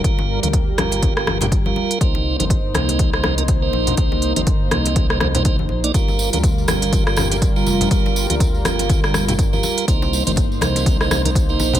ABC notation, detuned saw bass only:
X:1
M:4/4
L:1/16
Q:"Swing 16ths" 1/4=122
K:Gm
V:1 name="Detuned saw bass" clef=bass
G,,,3 D,,3 G,,,8 z2 | C,,3 G,,,3 C,,8 B,,,2 | C,,3 G,,,3 C,,6- C,, G,,, B,,,2 | G,,,3 D,,3 G,,,8 F,,,2 |
G,,,3 D,,3 G,,,8 z2 | C,,3 G,,,3 C,,8 B,,,2 |]